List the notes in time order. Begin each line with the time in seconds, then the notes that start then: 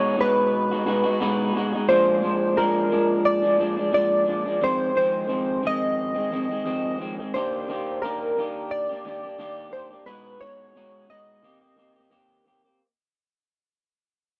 Already playing: B2 G#3 D#4 F#4 C#5
0.17 B2 G#3 D#4 F#4 B4
0.71 G#3 D#4 F#4
0.85 B2 G#3 D#4 F#4
1.04 G#3 D#4 F#4
1.20 B2 G#3 D#4 F#4
1.54 B2 G#3 D#4 F#4
1.73 G#3 D#4 F#4
1.88 A#2 F3 G#3 D4 C5
2.21 A#2 F3 G#3 D4
2.56 A#2 F3 G#3 D4 A#4
2.90 A#2 F3 G#3 D4
3.25 D5
3.42 F3 G#3 D4
3.58 A#2 F3 G#3 D4
3.77 F3 G#3 D4
3.92 A#2 F3 G#3 D4 D5
4.26 A#2 F3 G#3 D4
4.46 F3 G#3 D4
4.61 F2 D#3 G#3 C4 C5
4.94 F2 D#3 G#3 C4 C5
5.28 F2 D#3 G#3 C4
5.62 F2 D#3 G#3 C4
5.67 D#5
6.14 D#3 G#3 C4
6.30 F2 D#3 G#3 C4
6.49 D#3 G#3 C4
6.65 F2 D#3 G#3 C4
6.98 F2 D#3 G#3 C4
7.18 D#3 G#3 C4
7.34 D#3 A#3 D4 G4 C5
7.68 D#3 A#3 D4 G4
8.02 D#3 A#3 D4 G4 A#4
8.37 D#3 A#3 D4 G4
8.71 D5
8.89 A#3 D4 G4
9.05 D#3 A#3 D4 G4
9.23 A#3 D4 G4
9.39 D#3 A#3 D4 G4
9.71 D#3 A#3 D4 G4 C5
9.90 A#3 D4 G4
10.06 B2 G#3 D#4 F#4 B4
10.39 B2 G#3 D#4 F#4 C#5
10.75 B2 G#3 D#4 F#4
11.08 B2 G#3 D#4 F#4 D#5
11.43 D#3 A#3 C4 G4
11.61 A#3 C4 G4
11.76 D#3 A#3 C4 G4
11.96 A#3 C4 G4
12.10 D#3 A#3 C4 G4
12.45 D#3 A#3 C4 G4
12.64 A#3 C4 G4